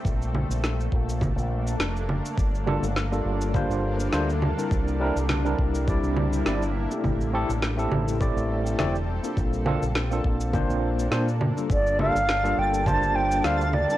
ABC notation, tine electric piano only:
X:1
M:4/4
L:1/16
Q:"Swing 16ths" 1/4=103
K:Gdor
V:1 name="Tine electric piano"
z16 | z2 [G,B,DFA] z2 [G,B,DFA]3 [G,B,DFc]4 [G,B,DFc] z2 [G,CDEB]- | [G,CDEB]2 [G,CDEB] z2 [G,CDEB]3 [G,CDEd]4 [G,CDEd] z2 [A,CEGA]- | [A,CEGA]2 [A,CEGA] z2 [A,CEGA]3 [A,CEGd]4 [A,CEGd] z2 [B,CDFA]- |
[B,CDFA]2 [B,CDFA] z2 [B,CDFA]3 [B,CDFc]4 [B,CDFc] z2 [G,B,DFA]- | [G,B,DFA]2 [G,B,DFA] z2 [G,B,DFA]3 [G,B,DFc]4 [G,B,DFc] z2 [G,CDEB] |]